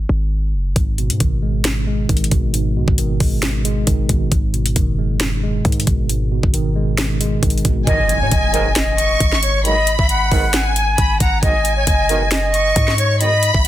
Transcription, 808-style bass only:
0.09 G#1
0.54 F#1
0.76 G#1
1.10 G#2
1.20 G#1
2.09 G#1
2.32 G#1
2.76 B1
2.88 G#1
3.20 G#1
3.87 G#1
4.09 G#1
4.32 G#1
4.76 F#1
5.65 G#2
5.87 G#1
6.43 G#1
7.43 G#1
7.65 G#1
7.87 G#1
8.21 G#2
8.32 G#1
9.20 G#1
9.99 G#1
10.32 G#1
10.98 G#1
11.20 G#1
11.43 G#1
11.87 F#1
12.76 G#2
13.54 G#1

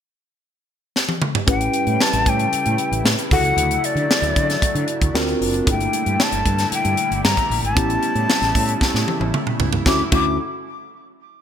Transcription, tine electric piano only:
1.47 C#4 E4 G4 B4
3.31 C#3 E4 F#4 A4
5.15 C4 F4 F#4 A#4
5.65 A#3 D4 E4 G#4
5.74 A3
7.75 B3 C#4 E4 G4
9.86 A3 C#4 E4 F#4
10.12 A3 C#4 E4 F#4

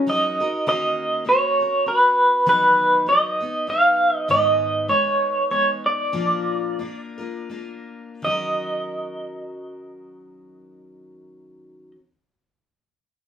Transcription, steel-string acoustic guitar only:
0.07 F#3 D#4 F#4 A#4
0.40 D#4 F#4 A#4
0.66 D#3 A#3 C#4 F#4 A#4
1.25 A#3 C#4 F#4 A#4
1.59 C#4 F#4 A#4
1.86 C#4 F#4
2.46 D#3 F#3 B3 D#4 B4
3.06 F#3 B3 D#4 B4
3.40 B3 D#4 B4
3.67 F#3 B3 D#4 B4
4.28 G#2 D#3 G#3 B3 D#4 B4
4.88 G#3 B3 D#4 B4
5.51 G#3 B3 D#4 B4
6.12 A#2 F3 A#3 D4 F4 A#4
6.79 A#3 D4 F4 A#4
7.18 A#3 D4 F4 A#4
7.50 A#3 D4 F4 A#4
8.22 D#3 F#3
8.26 C#4 F#4 A#4

